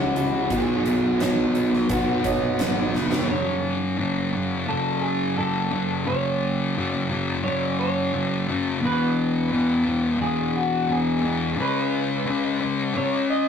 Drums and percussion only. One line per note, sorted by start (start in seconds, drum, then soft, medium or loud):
0.16 closed hi-hat medium
0.50 kick medium
0.50 closed hi-hat medium
0.86 closed hi-hat medium
1.20 snare loud
1.20 closed hi-hat medium
1.55 closed hi-hat medium
1.73 snare soft
1.89 kick loud
1.89 closed hi-hat medium
2.24 kick medium
2.24 closed hi-hat medium
2.59 snare medium
2.59 closed hi-hat medium
2.95 snare medium
3.12 snare medium